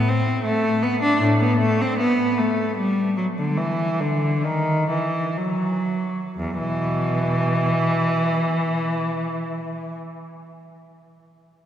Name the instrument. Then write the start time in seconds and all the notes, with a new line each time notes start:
cello
0.08 C4
0.45 A3
0.83 B3
1.02 D4
1.20 A2
1.40 B3
1.59 A3
1.81 C4
1.99 B3
2.38 A3
2.77 G3
3.17 F#3
3.38 D3
3.57 E3
4.00 D3
4.44 D#3
4.90 E3
5.37 F#3
6.38 E2
6.59 B2 E3